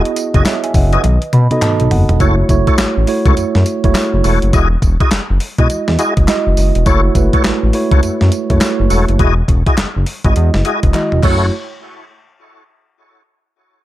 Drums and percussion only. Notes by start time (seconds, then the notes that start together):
0.05 closed hi-hat
0.16 closed hi-hat, tambourine
0.34 kick, closed hi-hat
0.45 snare, clap, closed hi-hat, tambourine
0.64 closed hi-hat
0.74 kick, open hi-hat, tambourine
0.93 closed hi-hat
1.04 closed hi-hat, high tom
1.22 closed hi-hat
1.33 closed hi-hat, mid tom
1.51 closed hi-hat, mid tom
1.62 clap, closed hi-hat, mid tom
1.80 closed hi-hat
1.91 floor tom, open hi-hat
2.09 closed hi-hat, floor tom
2.20 kick, closed hi-hat, tambourine
2.49 kick, closed hi-hat, tambourine
2.67 kick, closed hi-hat
2.78 snare, clap, closed hi-hat, tambourine
3.07 open hi-hat
3.26 kick, closed hi-hat
3.37 closed hi-hat, tambourine
3.55 snare
3.66 closed hi-hat, tambourine
3.84 kick, closed hi-hat
3.95 snare, clap, closed hi-hat, tambourine
4.24 open hi-hat, tambourine
4.42 closed hi-hat
4.53 kick, closed hi-hat, tambourine
4.82 kick, closed hi-hat, tambourine
5.00 kick, closed hi-hat
5.11 snare, clap, closed hi-hat, tambourine
5.40 open hi-hat
5.58 kick, closed hi-hat
5.70 closed hi-hat, tambourine
5.88 snare
5.99 closed hi-hat, tambourine
6.17 kick, closed hi-hat
6.28 snare, clap, closed hi-hat, tambourine
6.57 open hi-hat, tambourine
6.75 closed hi-hat
6.86 kick, closed hi-hat, tambourine
7.15 kick, closed hi-hat, tambourine
7.33 kick, closed hi-hat
7.44 snare, clap, closed hi-hat, tambourine
7.73 open hi-hat
7.91 kick, closed hi-hat
8.03 closed hi-hat, tambourine
8.21 snare
8.32 closed hi-hat, tambourine
8.50 kick, closed hi-hat
8.61 snare, clap, closed hi-hat, tambourine
8.90 open hi-hat, tambourine
9.08 closed hi-hat
9.19 kick, closed hi-hat
9.48 kick, closed hi-hat
9.66 kick, closed hi-hat
9.77 snare, clap, closed hi-hat
10.06 open hi-hat
10.24 kick, closed hi-hat
10.36 closed hi-hat
10.54 snare
10.65 closed hi-hat
10.83 kick, closed hi-hat
10.94 clap, closed hi-hat, high tom
11.12 mid tom
11.23 kick, clap, crash